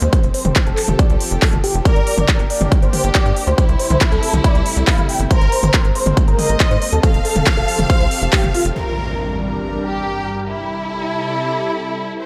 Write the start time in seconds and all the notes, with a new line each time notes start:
Already playing: G#3 A#3 C4
0.02 D#2 C5, closed hi-hat
0.13 F3 G4 A4, kick, closed hi-hat
0.23 F1, closed hi-hat
0.34 C5, open hi-hat
0.45 F1, closed hi-hat, mid tom
0.56 kick, clap, closed hi-hat
0.67 F1 A4, closed hi-hat
0.77 clap, open hi-hat
0.88 F1, closed hi-hat, mid tom
0.99 D5, kick, closed hi-hat
1.10 C2, closed hi-hat
1.21 open hi-hat
1.31 F1, closed hi-hat
1.42 A4, kick, clap, open hi-hat
1.53 F1, closed hi-hat, mid tom
1.64 G4, open hi-hat
1.74 F1, closed hi-hat
1.85 A#3 D4 G4 A#4 D5, kick, closed hi-hat
1.96 G1, closed hi-hat
2.07 D5, open hi-hat
2.18 G1, closed hi-hat, mid tom
2.29 kick, clap, closed hi-hat
2.39 G1, closed hi-hat
2.50 D5, open hi-hat
2.61 G1, closed hi-hat, mid tom
2.72 kick, closed hi-hat
2.82 G1 C5, closed hi-hat
2.93 G4, open hi-hat, mid tom
3.04 G1, closed hi-hat
3.15 D5, kick, clap, closed hi-hat
3.26 G2, closed hi-hat
3.36 open hi-hat
3.47 D2 C5, closed hi-hat
3.58 C3 G3 A3 E4, kick, closed hi-hat
3.69 C2, closed hi-hat
3.79 C5, open hi-hat
3.90 C2, closed hi-hat, mid tom
4.01 kick, clap, closed hi-hat
4.12 C2 A4, closed hi-hat
4.23 open hi-hat
4.33 C2, closed hi-hat, mid tom
4.44 D5, kick, closed hi-hat
4.55 C2, closed hi-hat
4.66 open hi-hat
4.77 C2, closed hi-hat
4.87 F5, kick, clap, open hi-hat
4.98 G1, closed hi-hat, mid tom
5.09 G5, open hi-hat
5.20 G1, closed hi-hat
5.30 G#3 A#3 C4 A#4 C5, kick, closed hi-hat
5.41 G#1, closed hi-hat
5.52 C5, open hi-hat
5.63 G#1, closed hi-hat, mid tom
5.74 kick, clap, closed hi-hat
5.84 G#1, closed hi-hat
5.95 C5, open hi-hat
6.06 G#1, closed hi-hat, mid tom
6.17 kick, closed hi-hat
6.28 G#1 A#4, closed hi-hat
6.39 D#5, open hi-hat, mid tom
6.49 G#1, closed hi-hat
6.60 C5, kick, clap, closed hi-hat
6.71 G#2, closed hi-hat
6.82 open hi-hat
6.92 D#2 A4, closed hi-hat
7.03 F3 C4 G4 A4 F5, kick, closed hi-hat
7.14 F1, closed hi-hat
7.25 A4, open hi-hat
7.36 F1, closed hi-hat, mid tom
7.46 kick, clap, closed hi-hat
7.57 F1 A4, closed hi-hat
7.68 open hi-hat
7.79 F1, closed hi-hat, mid tom
7.90 C5, kick, closed hi-hat
8.00 C2, closed hi-hat
8.11 open hi-hat
8.22 F1, closed hi-hat
8.33 G4, kick, clap, open hi-hat
8.44 F1, closed hi-hat, mid tom
8.54 F4, open hi-hat
8.65 F1, closed hi-hat
8.76 G2 G3 D4 A#4, impact
9.84 G4
10.49 C3 G3 E4 A4
12.21 G#2 G#3 C4 A#4 C5